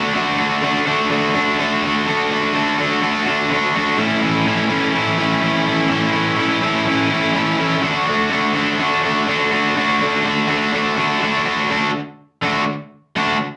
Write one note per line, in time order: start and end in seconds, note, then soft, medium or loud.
0.00 0.13 D3 medium
0.00 0.14 A3 medium
0.00 0.15 D4 medium
0.00 0.16 F#4 medium
0.14 0.61 D3 loud
0.14 0.39 A3 loud
0.14 0.38 D4 loud
0.14 0.37 F#4 loud
0.37 0.63 A3 medium
0.37 0.64 D4 medium
0.37 0.64 F#4 medium
0.62 0.88 D3 medium
0.62 0.87 A3 medium
0.62 0.86 D4 medium
0.62 0.85 F#4 medium
0.86 1.09 D3 medium
0.86 1.11 A3 medium
0.86 1.10 D4 medium
0.86 1.12 F#4 medium
1.10 1.35 D3 medium
1.10 1.35 A3 medium
1.10 1.33 D4 medium
1.10 1.32 F#4 medium
1.34 1.57 D3 medium
1.34 1.58 A3 medium
1.34 1.58 D4 medium
1.34 1.59 F#4 medium
1.58 2.05 D3 medium
1.58 1.85 A3 medium
1.58 1.83 D4 medium
1.58 1.81 F#4 medium
1.82 2.07 A3 medium
1.82 2.07 D4 medium
1.82 2.07 F#4 medium
2.06 2.52 D3 loud
2.06 2.32 A3 loud
2.06 2.30 D4 loud
2.06 2.29 F#4 loud
2.30 2.54 A3 medium
2.30 2.54 D4 medium
2.30 2.55 F#4 medium
2.53 2.79 D3 medium
2.53 2.79 A3 medium
2.53 2.78 D4 medium
2.53 2.77 F#4 medium
2.78 3.00 D3 medium
2.78 3.01 A3 medium
2.78 3.02 D4 medium
2.78 3.02 F#4 medium
3.01 3.27 D3 medium
3.01 3.27 A3 medium
3.01 3.26 D4 medium
3.01 3.25 F#4 medium
3.26 3.48 D3 medium
3.26 3.50 A3 medium
3.26 3.50 D4 medium
3.26 3.51 F#4 medium
3.49 3.96 D3 medium
3.49 3.76 A3 medium
3.49 3.74 D4 medium
3.49 3.73 F#4 medium
3.74 3.98 A3 medium
3.74 3.97 D4 medium
3.74 3.97 F#4 medium
3.97 4.71 A2 medium
3.97 4.45 E3 medium
3.97 4.24 A3 loud
3.97 4.22 C#4 loud
3.97 4.21 E4 loud
4.22 4.46 A3 medium
4.22 4.47 C#4 medium
4.22 4.47 E4 medium
4.45 4.71 E3 medium
4.45 4.70 A3 medium
4.45 4.70 C#4 medium
4.45 4.68 E4 medium
4.69 5.19 A2 medium
4.69 4.93 E3 medium
4.69 4.94 A3 medium
4.69 4.94 C#4 medium
4.69 4.95 E4 medium
4.93 5.19 E3 medium
4.93 5.18 A3 medium
4.93 5.17 C#4 medium
4.93 5.17 E4 medium
5.17 5.67 A2 medium
5.17 5.40 E3 medium
5.17 5.41 A3 medium
5.17 5.41 C#4 medium
5.17 5.43 E4 medium
5.41 5.89 E3 medium
5.41 5.67 A3 medium
5.41 5.65 C#4 medium
5.41 5.64 E4 medium
5.65 5.89 A3 medium
5.65 5.89 C#4 medium
5.65 5.91 E4 medium
5.88 6.37 A2 loud
5.88 6.37 E3 loud
5.88 6.15 A3 loud
5.88 6.12 C#4 loud
5.88 6.12 E4 loud
6.12 6.38 A3 medium
6.12 6.38 C#4 medium
6.12 6.39 E4 medium
6.37 6.63 E3 medium
6.37 6.62 A3 medium
6.37 6.61 C#4 medium
6.37 6.61 E4 medium
6.61 7.11 A2 medium
6.61 6.85 E3 medium
6.61 6.86 A3 medium
6.61 6.87 C#4 medium
6.61 6.88 E4 medium
6.86 7.12 E3 medium
6.86 7.12 A3 medium
6.86 7.10 C#4 medium
6.86 7.09 E4 medium
7.10 7.60 A2 medium
7.10 7.33 E3 medium
7.10 7.35 A3 medium
7.10 7.34 C#4 medium
7.10 7.36 E4 medium
7.34 7.82 E3 medium
7.34 7.60 A3 medium
7.34 7.58 C#4 medium
7.34 7.58 E4 medium
7.58 7.82 A3 medium
7.58 7.82 C#4 medium
7.58 7.84 E4 medium
7.82 8.29 D3 loud
7.82 8.09 A3 loud
7.82 8.08 D4 loud
7.82 8.06 F#4 loud
8.06 8.31 A3 medium
8.06 8.32 D4 medium
8.06 8.32 F#4 medium
8.30 8.57 D3 medium
8.30 8.56 A3 medium
8.30 8.55 D4 medium
8.30 8.53 F#4 medium
8.54 8.78 D3 medium
8.54 8.79 A3 medium
8.54 8.80 D4 medium
8.54 8.81 F#4 medium
8.79 9.05 D3 medium
8.79 9.04 A3 medium
8.79 9.03 D4 medium
8.79 9.03 F#4 medium
9.03 9.26 D3 medium
9.03 9.27 A3 medium
9.03 9.28 D4 medium
9.03 9.29 F#4 medium
9.27 9.75 D3 medium
9.27 9.54 A3 medium
9.27 9.53 D4 medium
9.27 9.51 F#4 medium
9.51 9.76 A3 medium
9.51 9.77 D4 medium
9.51 9.77 F#4 medium
9.75 10.22 D3 medium
9.75 10.01 A3 loud
9.75 10.00 D4 loud
9.75 9.99 F#4 loud
10.00 10.24 A3 medium
10.00 10.24 D4 medium
10.00 10.25 F#4 medium
10.24 10.49 D3 medium
10.24 10.48 A3 medium
10.24 10.48 D4 medium
10.24 10.47 F#4 medium
10.48 10.71 D3 medium
10.48 10.72 A3 medium
10.48 10.73 D4 medium
10.48 10.74 F#4 medium
10.72 10.97 D3 medium
10.72 10.96 A3 medium
10.72 10.95 D4 medium
10.72 10.95 F#4 medium
10.96 11.20 D3 medium
10.96 11.20 A3 medium
10.96 11.21 D4 medium
10.96 11.22 F#4 medium
11.21 11.68 D3 medium
11.21 11.47 A3 medium
11.21 11.46 D4 medium
11.21 11.44 F#4 medium
11.45 11.69 A3 medium
11.45 11.69 D4 medium
11.45 11.68 F#4 medium
11.70 11.89 D3 medium
11.70 11.89 A3 medium
11.70 11.90 D4 medium
11.70 11.90 F#4 loud
12.42 12.62 D3 medium
12.42 12.62 A3 medium
12.42 12.62 D4 medium
12.42 12.63 F#4 medium
13.16 13.35 D3 medium
13.16 13.36 A3 medium
13.16 13.36 D4 medium
13.16 13.36 F#4 medium